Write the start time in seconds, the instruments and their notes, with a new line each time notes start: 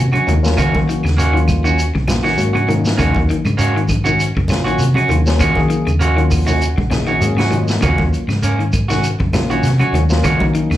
Already playing: fingered electric bass C3
0.12 clean electric guitar C#3 C#4 F#4, closed hi-hat, high conga, claves
0.26 fingered electric bass D#2, clean electric guitar D#3, tine electric piano F#3 A#3 C#4 D#4, closed hi-hat, low conga, shekere
0.43 tine electric piano F#3 A#3 C#4 F4, snare, high conga, shekere
0.57 clean electric guitar C#3 A#3 C#4 F#4, fingered electric bass D#3, kick, closed hi-hat, low conga, claves, shekere
0.73 fingered electric bass D#3, tine electric piano F#3 A#3 C#4 F#4, kick, high conga
0.89 clean electric guitar D#3, closed hi-hat, shekere
1.04 fingered electric bass D#2, clean electric guitar C#3, snare, closed hi-hat, claves, shekere
1.17 clean electric guitar A#3 C#4 F#4, closed hi-hat, shekere
1.33 clean electric guitar D#3, tine electric piano F#3 A#3 C#4 F4, closed hi-hat
1.48 kick, closed hi-hat, high conga, claves, shekere
1.64 clean electric guitar D#3 C#4 F#4, shekere
1.79 closed hi-hat, shekere
1.95 fingered electric bass A#1, clean electric guitar C#3, kick
2.07 clean electric guitar A#2, tine electric piano F#3 A#3 C#4 F4, snare, closed hi-hat, high conga, claves, shekere
2.23 clean electric guitar D#3 C#4 F#4, snare, shekere
2.37 fingered electric bass G#2, tine electric piano F#3 A#3 C#4 F#4, closed hi-hat, shekere
2.53 clean electric guitar C#3 C#4 F#4, closed hi-hat, high conga, claves
2.68 clean electric guitar D#3, tine electric piano F#3 A#3 C#4 D#4, closed hi-hat, low conga, shekere
2.85 snare, high conga, shekere
2.97 fingered electric bass D#2, clean electric guitar C#3 A#3 C#4 F#4, kick, closed hi-hat, low conga, claves, shekere
3.15 fingered electric bass D#2, kick, high conga
3.29 clean electric guitar D#3, closed hi-hat, shekere
3.45 fingered electric bass G#2, clean electric guitar C#3, closed hi-hat, high conga, claves, shekere
3.57 clean electric guitar A#3 C#4 F#4, closed hi-hat, shekere
3.76 clean electric guitar D#3, closed hi-hat
3.88 kick, closed hi-hat, high conga, claves, shekere
4.04 clean electric guitar D#3 C#4 F#4, low conga, shekere
4.19 closed hi-hat, shekere
4.37 fingered electric bass F#2, clean electric guitar C#3, kick
4.48 fingered electric bass A#1, clean electric guitar C#3, tine electric piano F#3 A#3 C#4 F4, snare, closed hi-hat, high conga, claves, shekere
4.64 clean electric guitar D#3 C#4 F#4, closed hi-hat, shekere
4.79 fingered electric bass C3, closed hi-hat, shekere
4.94 clean electric guitar C#3 C#4 F#4, closed hi-hat, high conga, claves
5.09 fingered electric bass D#2, clean electric guitar D#3, tine electric piano F#3 A#3 C#4 F4, closed hi-hat, low conga, shekere
5.26 tine electric piano F#3 A#3 C#4 F4, snare, shekere
5.39 fingered electric bass D#3, clean electric guitar A#3 C#4 F#4, muted clean electric guitar stroke, kick, closed hi-hat, low conga, claves, shekere
5.55 fingered electric bass D#3, tine electric piano F#3 A#3 C#4 G#4, kick, high conga
5.70 clean electric guitar D#3, closed hi-hat, shekere
5.87 fingered electric bass D#2, clean electric guitar C#3, closed hi-hat, high conga, claves, shekere
5.99 clean electric guitar A#3 C#4 F#4, closed hi-hat, shekere
6.17 clean electric guitar D#3, tine electric piano F#3 A#3 C#4 F4, closed hi-hat
6.31 tine electric piano F#5, kick, open hi-hat, high conga, claves, shekere
6.46 clean electric guitar D#3 C#4 F#4, tine electric piano D#5, low conga, shekere
6.61 tine electric piano F#5, closed hi-hat, shekere
6.78 fingered electric bass A#1, clean electric guitar C#3, kick, high conga
6.90 clean electric guitar C#3, tine electric piano F#3 A#3 C#4 G#4 D#5, snare, closed hi-hat, high conga, claves, shekere
7.07 clean electric guitar D#3 C#4 F#4, shekere
7.20 fingered electric bass G#2, tine electric piano F#3 A#3 C#4 G#4 C#5, closed hi-hat, shekere
7.37 clean electric guitar C#3 C#4 F#4, snare, closed hi-hat, high conga, claves
7.50 clean electric guitar D#3, tine electric piano F#3 A#3 C#4 F4 D#5, closed hi-hat, low conga, shekere
7.68 snare, shekere
7.81 fingered electric bass D#2, clean electric guitar C#3 A#3 C#4 F#4, kick, closed hi-hat, low conga, claves, shekere
7.98 fingered electric bass D#2, kick, high conga
8.13 closed hi-hat, shekere
8.28 fingered electric bass G#2, clean electric guitar C#3, snare, closed hi-hat, high conga, claves, shekere
8.43 clean electric guitar A#3 C#4, closed hi-hat, shekere
8.59 clean electric guitar D#3, closed hi-hat
8.73 kick, closed hi-hat, high conga, claves, shekere
8.88 clean electric guitar D#3 C#4 F#4, snare, low conga, shekere
9.04 closed hi-hat, shekere
9.20 fingered electric bass F#2, clean electric guitar C#3, kick, high conga
9.32 fingered electric bass A#1, clean electric guitar C#3, tine electric piano F#3 A#3 C#4 F4, snare, closed hi-hat, high conga, claves, shekere
9.50 clean electric guitar D#3 C#4 F#4, closed hi-hat, shekere
9.63 fingered electric bass C3, snare, closed hi-hat, shekere
9.79 clean electric guitar C#3 C#4 F#4, closed hi-hat, high conga, claves
9.92 fingered electric bass D#2, clean electric guitar D#3, tine electric piano F#3 A#3 C#4 F#4, closed hi-hat, low conga, shekere
10.09 tine electric piano F#3 A#3 C#4 F4, snare, shekere
10.23 clean electric guitar C#3 A#3 C#4 F#4, fingered electric bass D#3, kick, closed hi-hat, low conga, claves, shekere
10.40 fingered electric bass D#3, tine electric piano F#3 A#3 C#4 D#4, kick, high conga
10.55 clean electric guitar D#3, closed hi-hat, shekere
10.70 fingered electric bass D#2, clean electric guitar C#3, snare, closed hi-hat, high conga, claves, shekere